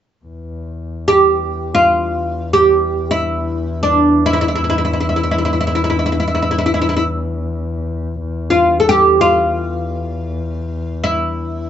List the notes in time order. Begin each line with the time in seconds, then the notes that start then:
0.25 E2
1.08 G4
1.75 F4
2.53 G4
3.11 E4
3.83 D4
4.26 E4
4.33 E4
4.41 E4
4.48 E4
4.56 E4
4.64 E4
4.70 E4
4.78 E4
4.85 E4
4.93 E4
5.00 E4
5.09 E4
5.16 E4
5.23 E4
5.31 E4
5.38 E4
5.45 E4
5.53 E4
5.61 E4
5.67 E4
5.75 E4
5.84 E4
5.90 E4
5.99 E4
6.06 E4
6.12 E4
6.20 E4
6.28 E4
6.35 E4
6.42 E4
6.51 E4
6.58 E4
6.66 E4
6.74 E4
6.82 E4
6.89 E4
6.97 E4
8.50 F4
8.80 A4
8.89 G4
9.21 F4
11.04 E4